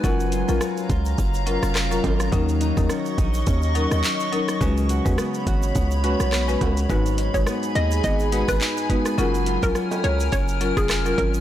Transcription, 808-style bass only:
X:1
M:4/4
L:1/16
Q:"Swing 16ths" 1/4=105
K:Abdor
V:1 name="808-style bass" clef=bass
G,,,3 B,,, z2 D,,2 G,,,3 F,,,3 A,,,2 | E,,3 E,, z2 B,,,2 E,,3 E,, z4 | D,,3 E,, z2 A,,,2 D,,3 C,,3 D,,2 | A,,,3 A,,, z2 E,,2 A,,,3 A,,, z4 |
G,,,3 B,,, z2 D,,2 G,,,3 F,,,3 A,,,2 |]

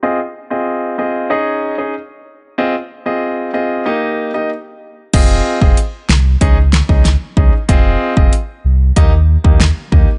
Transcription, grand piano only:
X:1
M:4/4
L:1/16
Q:1/4=94
K:Fm
V:1 name="Grand piano"
[CFAe] z2 [CFAe]3 [CFAe]2 [DEAe]3 [DEAe] z4 | [CFAe] z2 [CFAe]3 [CFAe]2 [B,EGe]3 [B,EGe] z4 | [CFAe]3 [CFAe] z4 [DEAe] z2 [DEAe] z2 [DEAe] z | [CFAe]3 [CFAe] z4 [B,EGe] z2 [B,EGe] z2 [B,EGe] z |]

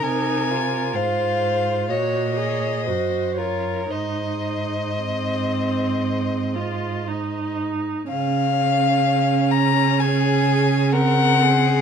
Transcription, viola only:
X:1
M:4/4
L:1/8
Q:1/4=63
K:Abmix
V:1 name="Viola"
E F3 G A G F | E2 C3 F E2 | D6 C2 |]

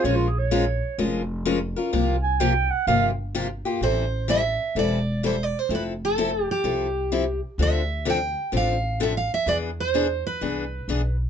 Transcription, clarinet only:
X:1
M:4/4
L:1/16
Q:"Swing" 1/4=127
K:Cphr
V:1 name="Clarinet"
d F A d6 z6 z | z2 a2 g2 _g2 f2 z6 | [K:Am] z16 | z16 |
z16 | z16 |]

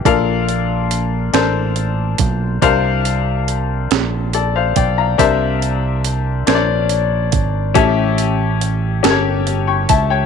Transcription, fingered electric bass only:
X:1
M:6/8
L:1/8
Q:3/8=47
K:Cmix
V:1 name="Fingered electric bass" clef=bass
B,,,3 A,,,2 =B,,, | C,,3 B,,,2 =B,,, | C,,3 B,,,2 _A,,, | A,,,3 G,,,2 ^C,, |]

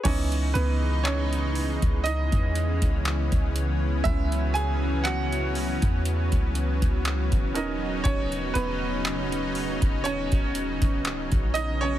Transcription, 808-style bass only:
X:1
M:4/4
L:1/16
Q:"Swing 16ths" 1/4=60
K:C#dor
V:1 name="808-style bass" clef=bass
C,,2 C,,4- C,, C,,2 E,,2 C,,2 C,,3 | C,,6- C,, E,,2 C,,2 C,,2 D,,,3 | D,,,2 D,,,4- D,,, D,,,2 D,,,2 C,,,2 A,,,3 |]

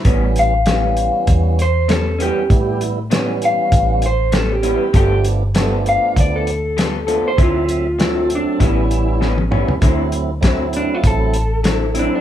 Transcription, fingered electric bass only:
X:1
M:4/4
L:1/8
Q:"Swing 16ths" 1/4=98
K:Ador
V:1 name="Fingered electric bass" clef=bass
A,,,4 E,,4 | A,,4 A,,,4 | G,,,4 D,,4 | D,,4 A,,,4 |
D,,4 A,,,4 |]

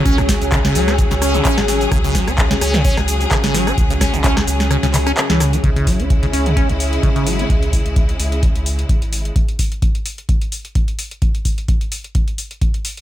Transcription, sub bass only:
X:1
M:4/4
L:1/16
Q:"Swing 16ths" 1/4=129
K:C#m
V:1 name="Sub bass" clef=bass
C,,3 C,,3 C,,3 C,,3 z G,,,3 | C,,3 C,,3 C,,3 C,,3 z G,,,3 | C,,3 C,,3 C,,3 C,,3 z C,,3 | C,,3 C,,3 C,,3 C,,3 z G,,,3 |
C,,3 C,,3 C,,3 C,,3 z G,,,3 | z16 | z16 |]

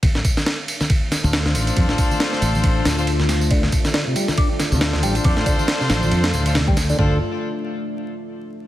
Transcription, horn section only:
X:1
M:4/4
L:1/16
Q:"Swing 16ths" 1/4=138
K:Dm
V:1 name="Horn section"
z8 z3 [DFAc]4- [DFAc]- | [DFAc]8- [DFAc]3 [DFAc] z4 | z8 z3 [DFAc]4- [DFAc]- | [DFAc]8- [DFAc]3 [DFAc] z4 |
[DFAc]2 z12 z2 |]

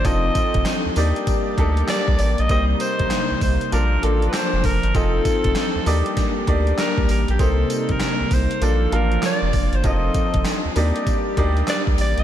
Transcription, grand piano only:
X:1
M:4/4
L:1/8
Q:"Swing 16ths" 1/4=98
K:Eblyd
V:1 name="Grand piano"
[CEFAe]3 [B,DEGd]2 [B,DEGA]2 z | [B,CEGc]3 z [B,DFAd] [B,DFAd]2 z | [CEF_A=Ae]3 [B,DEGd]2 [B,DEGd]2 z | [B,CEGc]3 z [B,DFAd] [B,DFfa]2 z |
[CEFAe]3 [B,DEGd]2 [B,DEGd]2 z |]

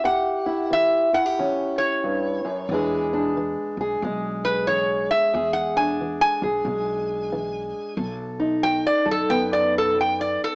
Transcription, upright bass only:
X:1
M:4/4
L:1/8
Q:"Swing" 1/4=91
K:Emix
V:1 name="Upright bass" clef=bass
z8 | E,,3 B,,, B,,,4 | E,,3 B,,, B,,,4 | B,,,3 F,, F,,4 |]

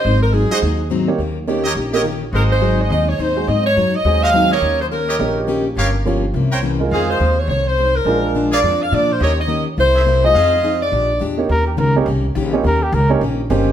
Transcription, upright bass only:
X:1
M:4/4
L:1/8
Q:"Swing" 1/4=210
K:Ebmix
V:1 name="Upright bass" clef=bass
A,,,3 z E,,4 | E,,4 B,,,4 | A,,,4 E,,2 E,,2 | A,,2 _G,,2 E,,4 |
E,,4 B,,,4 | G,,,4 C,,4 | F,,2 E,,2 C,,4 | B,,,4 F,,2 B,,2 |
E,,4 C,,4 | F,,4 B,,,2 _F,,2 | E,,2 D,,2 C,,2 B,,,2 | E,,2 D,,2 B,,,2 G,,,2 |]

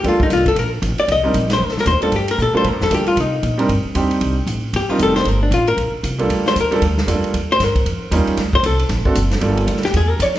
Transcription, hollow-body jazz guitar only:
X:1
M:4/4
L:1/8
Q:"Swing" 1/4=230
K:Gm
V:1 name="Hollow-body jazz guitar"
F E F A B z2 d | e3 c (3B A B c A | G B A c B A G F | E3 z4 z |
z4 G F A c | B D F B2 z3 | z c B2 z4 | z c B2 z4 |
z c A2 z4 | z3 G ^G B ^c z |]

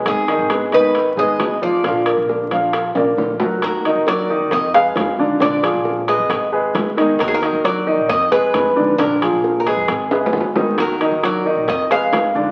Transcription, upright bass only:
X:1
M:4/4
L:1/16
Q:1/4=134
K:Ebm
V:1 name="Upright bass" clef=bass
A,,,3 A,,,6- A,,, A,,,6 | B,,,3 B,,,6- B,,, B,,,2 B,,,2 =D,,2 | E,,3 E,,4 E,, F,,4 F,,4 | B,,,3 B,,,4 F,, A,,,4 =D,,4 |
E,,3 E,,4 B,,, F,,4 F,,4 | B,,,3 B,,,4 F,, A,,,4 =D,,4 | E,,3 E,,4 B,,, F,,4 F,,4 |]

